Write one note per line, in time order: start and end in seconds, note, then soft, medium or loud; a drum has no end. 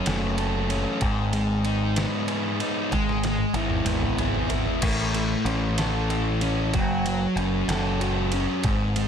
0.00 0.70 F#2 medium
0.00 1.01 F#3 medium
0.00 0.68 C#4 medium
0.06 0.84 F#1 medium
0.06 1.02 A3 medium
0.06 snare loud
0.06 ride loud
0.37 1.01 A4 medium
0.37 ride medium
0.69 1.01 C#4 medium
0.69 ride medium
1.01 2.05 G#1 loud
1.01 2.60 G#2 medium
1.01 kick loud
1.01 ride loud
1.33 2.91 G#3 medium
1.33 ride medium
1.65 2.59 D#4 medium
1.65 ride medium
1.96 2.92 B3 medium
1.96 snare loud
1.96 ride loud
2.28 2.92 G#4 medium
2.28 ride medium
2.60 2.92 D#4 medium
2.60 ride medium
2.92 3.44 G#1 medium
2.92 3.23 G#3 medium
2.92 kick loud
2.92 snare medium
2.92 ride medium
3.09 snare medium
3.24 4.83 G#3 medium
3.24 snare medium
3.24 ride medium
3.39 high tom medium
3.53 3.80 G#1 loud
3.53 4.48 E4 medium
3.53 high tom medium
3.53 ride medium
3.70 mid tom medium
3.85 4.63 G#1 loud
3.85 4.83 B3 medium
3.85 mid tom medium
3.85 ride loud
4.02 mid tom medium
4.18 4.82 G#4 medium
4.18 mid tom medium
4.18 ride medium
4.35 floor tom medium
4.49 4.82 E4 medium
4.49 floor tom loud
4.49 ride medium
4.66 floor tom medium
4.82 5.34 A1 medium
4.82 6.41 A2 medium
4.82 kick loud
4.82 crash loud
4.82 ride loud
5.14 6.74 A3 medium
5.14 ride medium
5.45 6.75 A1 loud
5.45 6.40 C#4 medium
5.45 ride medium
5.78 6.74 A4 medium
5.78 snare loud
5.78 ride loud
6.10 6.74 E4 medium
6.10 ride medium
6.41 6.73 C#4 medium
6.41 ride medium
6.74 7.25 F#1 loud
6.74 7.05 F#3 medium
6.74 kick loud
6.74 ride loud
7.06 8.65 F#3 medium
7.06 ride medium
7.36 7.62 F#1 medium
7.36 8.32 C#4 medium
7.36 ride medium
7.68 8.46 F#1 loud
7.68 8.65 A4 medium
7.68 snare loud
7.68 ride loud
8.01 8.64 F#4 medium
8.01 ride medium
8.32 8.65 C#4 medium
8.32 ride medium
8.64 9.08 G#1 loud
8.64 9.08 G#2 medium
8.64 kick loud
8.64 ride loud
8.96 9.08 G#3 medium
8.96 ride medium